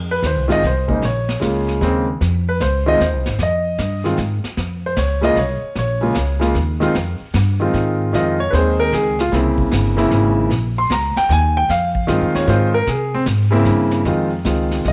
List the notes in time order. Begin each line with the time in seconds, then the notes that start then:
Already playing: F2
0.11 B4
0.22 D#2 C5, kick, snare, hi-hat pedal
0.36 C2
0.48 G#1 D#3 G#3 C4 F4, snare
0.52 D#5
0.63 C2 C5, kick, snare
0.88 C#3 G#3 A#3 D#4, kick
1.02 A#1 C#5, brush sweep, kick, snare
1.29 snare
1.40 C#2 C#3 G#3 A#3 F4, kick, snare, hi-hat pedal
1.68 snare
1.81 D#2 C#3 G#3 A#3 C4, kick, snare
2.21 F2, brush sweep, kick, snare
2.49 B4
2.60 C#2 C5, kick, snare, hi-hat pedal
2.86 D#3 G#3 C4 F4 D#5
3.00 D#2 C5, kick, snare
3.13 C2
3.26 G#1, snare
3.39 F2, brush sweep, kick, snare
3.43 D#5
3.78 G2, kick, snare, hi-hat pedal
4.04 D#3 G#3 C4 F4, snare
4.17 G#2, kick, snare, hi-hat pedal
4.44 muted upright bass stroke, snare
4.57 F2, brush sweep, kick, snare
4.86 C5
4.96 C#2 C#5, kick, snare, hi-hat pedal
5.21 C#3 G#3 A#3 F4 D#5, snare
5.36 C2 C#5, kick, snare
5.75 A#1 C#5, brush sweep, kick, snare
6.01 C#3 G#3 A#3 F4
6.14 C#2, kick, snare, hi-hat pedal
6.40 C#3 G#3 A#3 F4, snare
6.55 D#2, kick, snare
6.80 D#3 G#3 C4 F4, snare
6.94 F2, brush sweep, kick, snare
7.20 muted upright bass stroke
7.34 G2, kick, snare, hi-hat pedal
7.60 D#3 G#3 C4 F4
7.73 G#2, kick, snare
8.13 F2 D#3 G#3 C4 F4 D#5, brush sweep, kick, snare
8.40 C#5
8.50 D#2 D#3 G#3 C4 G#4 B4 C5, kick, snare
8.80 A#4
8.92 C#2 G#4, kick, snare, hi-hat pedal
9.19 F4, snare
9.32 C2 C#3 A#3 C4 E4, brush sweep, kick, snare
9.58 kick
9.71 G1, kick, snare, hi-hat pedal
9.97 C#3 A#3 C4 E4, snare
10.11 G#1, kick, snare
10.50 A#1, brush sweep, kick, snare
10.78 C6
10.90 C#2 A#5, kick, snare, hi-hat pedal
11.16 G5, snare
11.29 D#2 G#5, kick, snare
11.57 G5
11.69 F2 F5, brush sweep, kick, snare
11.95 kick
12.07 G2 D#3 G#3 C4 F4, kick, snare, hi-hat pedal
12.21 F2
12.35 D#2 C#5, snare
12.47 G#2 D#3 G#3 C4 F4 C5, kick, snare
12.74 A#4
12.87 C3 G#4, brush sweep, kick, snare
13.15 C4
13.26 G#2, kick, snare, hi-hat pedal
13.51 C#3 A#3 C4 E4
13.65 G2, kick, snare
13.91 snare
14.05 F2 D#3 G#3 C4 F4, brush sweep, kick, snare
14.45 C#2 D#3 G#3 C4 F4, kick, snare, hi-hat pedal
14.71 snare
14.85 C2 D#5, kick, snare